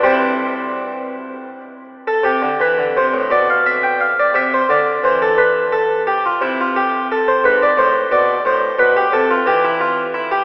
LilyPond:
<<
  \new Staff \with { instrumentName = "Harpsichord" } { \time 6/8 \key c \major \tempo 4. = 58 <e' c''>2~ <e' c''>8 r16 a'16 | g'8 b'8 c''8 d''16 f''16 e''16 g''16 f''16 d''16 | e''16 c''16 d''8 c''16 a'16 b'8 a'8 g'16 f'16 | e'16 f'16 g'8 a'16 c''16 b'16 d''16 c''8 d''8 |
c''8 b'16 g'16 a'16 f'16 g'16 e'16 f'8 e'16 g'16 | }
  \new Staff \with { instrumentName = "Harpsichord" } { \clef bass \time 6/8 \key c \major <c g c'>4. r4. | c16 d16 e16 d16 c16 a,16 b,4. | c8 d8 e2 | c4. gis,8 a,8 b,8 |
a,8 b,8 c8 e4. | }
>>